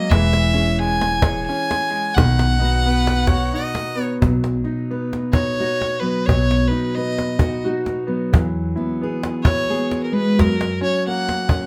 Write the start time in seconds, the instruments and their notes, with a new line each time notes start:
Already playing: upright piano F#3 A#3 C#4 G#4, steel-string acoustic guitar F#3, fiddle D#5
0.10 upright bass E1, upright piano E3, steel-string acoustic guitar E3 E4 G#4 C#5, fiddle E5, cajon bass, cajon slap
0.33 cajon slap
0.53 upright piano C#4, steel-string acoustic guitar G#4 C#5
0.79 upright piano G#3, fiddle G#5, cajon slap
1.01 cajon slap
1.22 upright piano G#4, steel-string acoustic guitar C#5, cajon bass
1.47 upright piano C#4, fiddle G#5, cajon slap
1.71 cajon slap
1.90 upright piano G#3, cajon slap
2.15 upright bass B1, steel-string acoustic guitar B2 B4, upright piano D#3, fiddle F#5, cajon bass, cajon slap
2.39 cajon slap
2.59 upright piano D#4, steel-string acoustic guitar D#4 F#4 B4, cajon slap
2.86 upright piano B3, harmonica B4
3.07 cajon slap
3.27 upright piano F#4, steel-string acoustic guitar F#4, harmonica C#5, cajon bass, cajon slap
3.53 upright piano D#4, harmonica D#5
3.75 cajon slap
3.95 upright piano B3
4.03 harmonica C#5
4.21 upright bass B1, steel-string acoustic guitar B2, upright piano F#3, cajon bass
4.44 cajon slap
4.64 upright piano D#4, steel-string acoustic guitar D#4
4.79 cajon slap
4.91 upright piano B3, steel-string acoustic guitar B4
5.13 cajon slap
5.33 upright piano D#4, steel-string acoustic guitar F#4, fiddle C#5, cajon bass
5.47 cajon slap
5.60 steel-string acoustic guitar D#4, upright piano F#4, cajon slap
5.81 cajon slap
6.00 steel-string acoustic guitar F#3, upright piano B3, fiddle B4
6.26 upright bass B1, steel-string acoustic guitar B2, upright piano F#3, fiddle C#5, cajon bass
6.51 cajon slap
6.68 upright piano D#4, steel-string acoustic guitar D#4, fiddle B4
6.86 cajon slap
6.95 upright piano B3, steel-string acoustic guitar B4, fiddle D#5
7.18 cajon slap
7.39 upright piano D#4, steel-string acoustic guitar F#4, cajon bass
7.53 cajon slap
7.65 steel-string acoustic guitar D#4, upright piano F#4
7.86 cajon slap
8.07 steel-string acoustic guitar F#3, upright piano B3
8.32 upright bass E2, steel-string acoustic guitar E3, upright piano F#3, cajon bass
8.76 steel-string acoustic guitar B3, upright piano E4
8.89 cajon slap
9.01 upright piano B3, steel-string acoustic guitar G#4
9.23 cajon slap
9.43 upright piano E4, steel-string acoustic guitar F#4, fiddle C#5, cajon bass
9.58 cajon slap
9.70 steel-string acoustic guitar B3, upright piano G#4, cajon slap
9.91 cajon slap
10.04 fiddle A#4
10.12 steel-string acoustic guitar G#3, upright piano B3, fiddle B4
10.39 upright bass F#2, steel-string acoustic guitar F#3, upright piano F#3, fiddle A#4, cajon bass, cajon slap
10.61 cajon slap
10.81 upright piano C#4, steel-string acoustic guitar F#4, fiddle C#5, cajon slap
11.07 upright piano A#3, steel-string acoustic guitar A#4, fiddle F#5
11.29 cajon slap
11.49 upright piano C#4, steel-string acoustic guitar A#4, cajon bass
11.62 cajon slap